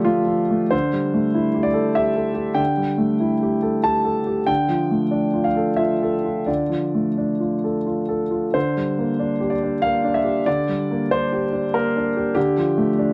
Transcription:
grand piano
Already playing: D3 F3 A3 D4 G4 A4
0.05 A3 F4
0.27 F3
0.51 A3
0.71 D3 C5
0.93 G3
1.14 A3
1.34 E4
1.54 G4
1.63 D5
1.74 A4
1.95 G4 E5
2.16 A4
2.34 G4
2.54 D3 G5
2.77 G3
2.98 A3
3.20 E4
3.42 G4
3.62 A4
3.84 G4 A5
4.05 A4
4.27 G4
4.47 D3 G5
4.69 F3
4.91 A3
5.11 D4
5.34 F4
5.44 F5
5.57 A4
5.77 F4 E5
6.03 A4
6.24 F4
6.46 D3 D5
6.70 F3
6.95 A3
7.18 D4
7.40 F4
7.64 A4
7.87 F4
8.09 A4
8.31 F4
8.54 D3 C5
8.77 G3
8.98 A#3
9.19 D4
9.40 G4
9.50 D5
9.63 D4
9.82 A#3 F5
10.04 D4
10.14 E5
10.25 G4
10.46 D3 D5
10.69 G3
10.91 A#3
11.11 D4 C5
11.32 G4
11.53 D4
11.74 A#3 A#4
11.97 D4
12.17 G4
12.35 D3 G4
12.57 F3
12.78 A3
12.99 D4

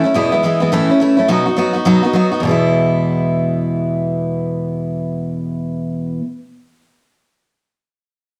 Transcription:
steel-string acoustic guitar
0.04 A3 C#4 E4
0.14 E2 B2 E3 G#3 B3 E4
0.32 E3 G#3 B3 E4
0.43 E3 G#3 B3 E4
0.60 E3 G#3 B3 E4
0.72 A2 E3 A3 C#4 E4
0.89 A3 C#4 E4
1.00 E3 A3 C#4 E4
1.17 A3 C#4 E4
1.28 B2 F#3 B3 D#4 F#4
1.46 B3 D#4 F#4
1.56 F#3 B3 D#4 F#4
1.73 B3 D#4 F#4
1.85 B2 F#3 B3 D#4 F#4
2.03 B3 D#4 F#4
2.13 F#3 B3 D#4 F#4
2.32 B3 D#4 F#4
2.40 E2 B2
2.45 E3 G#3 B3
2.51 E4

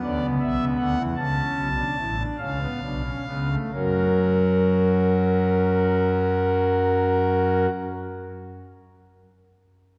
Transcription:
pipe organ
Already playing: B3
0.03 D2 D3 D5
0.22 C#2 C#3
0.41 B1 B2 E5
0.60 C#2 C#3
0.78 D2 D3 F#5
0.98 E2 E3
1.17 C#2 C#3 C#4 A5
1.57 B1 B2
1.77 D4
1.98 A1 A2 E4
2.18 D4
2.39 C#2 C#3 C#4 F5
2.61 B3
2.82 B1 B2 D4
3.04 C#4
3.27 C#2 C#3 B3
3.50 A3
3.73 F#2 F#3 C#4 F#4 A#4

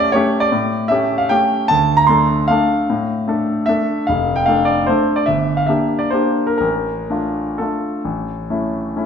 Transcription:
grand piano
Already playing: A3 C#4 G4 D5
0.12 A3 C#4 G4 C#5
0.40 D5
0.52 A2
0.88 A3 C#4 G4 E5
1.18 F5
1.29 A3 C#4 G4 G5
1.68 D2 A5
1.97 A#5
2.07 A3 D4 A4 C6
2.48 A3 D4 A4 F5
2.90 A2
3.28 A3 D4 A4
3.66 A3 D4 A4 E5
4.07 F1 F5
4.36 G5
4.46 A3 D4 A4 F5
4.65 D5
4.87 A3 D4 A4 C5
5.16 D5
5.26 G1 E5
5.57 F5
5.67 A#3 D4 G4 E5
5.99 D5
6.10 A#3 D4 G4 C5
6.47 A#4
6.58 A1 A#4
7.10 A3 D4 F4
7.58 A3 D4 F4 A4
8.05 A1
8.50 A3 C#4 E4
8.96 A3 C#4 E4

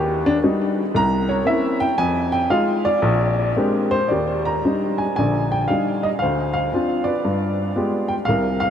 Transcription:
upright piano
Already playing: D#2 G4
0.26 D4
0.44 G3 D4 D#4
0.95 C2 A#5
1.29 C#5
1.45 A#3 C4 C#4 E4 E5
1.80 G5
1.98 F2 G#5
2.32 G5
2.50 G#3 D#4 F4 F5
2.85 D5
3.02 A#1
3.56 G#3 A#3 C4 D4 G4
3.91 C5
4.08 D#2 G4 D5
4.45 A#5
4.65 G3 D4 D#4
4.98 G#5
5.16 A#1 D3 D5 G#5
5.52 G5
5.68 G3 D4 D#4 F5
6.03 D#5
6.19 C5 F5
6.23 D2
6.54 F5
6.73 C4 D4 F4
7.04 B4 D5
7.25 G2
7.76 G#3 B3 F4 G4
8.08 G5
8.25 C2 C3 A#4 F5
8.60 F5

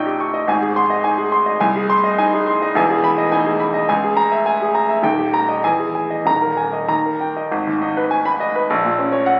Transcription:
grand piano
Already playing: A#1 A#2 D#4 G4 D#5 G5 C#6
0.06 G4
0.20 C#6
0.34 D#5
0.47 G#1 G#2 G#5
0.62 G#4
0.76 C6
0.90 D#5
1.04 D#4 G#5
1.18 G#4
1.32 C6
1.46 D#5
1.60 C2 G#5
1.76 G#4
1.90 C6
2.04 D#5
2.18 D#4 G#5
2.34 G#4
2.47 C6
2.62 D#5
2.75 E1 E2 G#5
2.90 G#4
3.04 B5
3.18 D#5
3.32 D#4 G#5
3.46 G#4
3.60 B5
3.74 D#5
3.89 C#2 G#5
4.03 G#4
4.17 A#5
4.32 E5
4.46 G#5
4.61 G#4
4.75 A#5
4.89 E5
5.03 D#1 D#2 G5
5.18 G4
5.34 A#5
5.49 D#5
5.64 E2 G#5
5.79 G#4
5.95 G#5
6.10 D#5
6.26 D#1 D#2 A#5
6.42 A#4
6.57 G#5
6.73 D#5
6.88 D#2 A#5
7.06 A#4
7.20 G5
7.36 D#5
7.51 G#1
7.67 D#2
7.82 D#4
7.97 B4
8.11 G#5
8.25 B5
8.40 D#5
8.55 B4
8.70 A#1
8.84 A#2
8.99 C#4
9.12 C#5
9.26 F#5

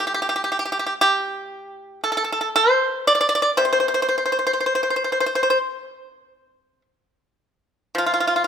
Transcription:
pipa
Already playing: A2
0.07 G4
0.14 G4
0.22 G4
0.29 G4
0.36 G4
0.44 G4
0.52 G4
0.59 G4
0.65 G4
0.72 G4
0.79 G4
0.86 G4
1.01 G4
2.04 A4
2.12 A4
2.17 A4
2.24 A4
2.32 A4
2.41 A4
2.56 C5
3.07 D5
3.15 D5
3.21 D5
3.29 D5
3.35 D5
3.42 D5
3.57 C3 C5
3.65 C5
3.73 C5
3.80 C5
3.88 C5
3.94 C5
4.02 C5
4.09 C5
4.18 C5
4.26 C5
4.32 C5
4.39 C5
4.47 C5
4.53 C5
4.60 C5
4.66 C5
4.75 C5
4.83 C5
4.90 C5
4.96 C5
5.04 C5
5.12 C5
5.20 C5
5.26 C5
5.35 C5
5.43 C5
5.50 C5
7.95 F3 F4
8.06 F4
8.14 F4
8.20 F4
8.27 F4
8.36 F4
8.44 F4

